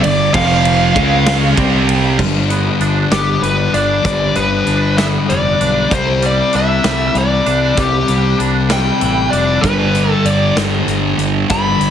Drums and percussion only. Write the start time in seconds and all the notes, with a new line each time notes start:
0.04 ride
0.34 kick, ride
0.65 ride
0.96 kick, ride
1.26 snare, ride
1.57 kick, ride
1.89 ride
2.19 kick, crash
2.50 closed hi-hat
2.80 closed hi-hat
3.12 snare, closed hi-hat
3.43 closed hi-hat
3.74 closed hi-hat
4.05 kick, closed hi-hat
4.35 closed hi-hat
4.66 closed hi-hat
4.98 snare, closed hi-hat
5.30 closed hi-hat
5.61 closed hi-hat
5.91 kick, closed hi-hat
6.22 closed hi-hat
6.53 closed hi-hat
6.84 snare, closed hi-hat
7.15 closed hi-hat
7.46 closed hi-hat
7.77 kick, closed hi-hat
8.08 closed hi-hat
8.40 closed hi-hat
8.70 snare, closed hi-hat
9.01 closed hi-hat
9.33 closed hi-hat
9.63 kick, closed hi-hat
9.95 closed hi-hat
10.25 closed hi-hat
10.57 snare, closed hi-hat
10.88 closed hi-hat
11.19 closed hi-hat
11.50 kick, closed hi-hat
11.81 closed hi-hat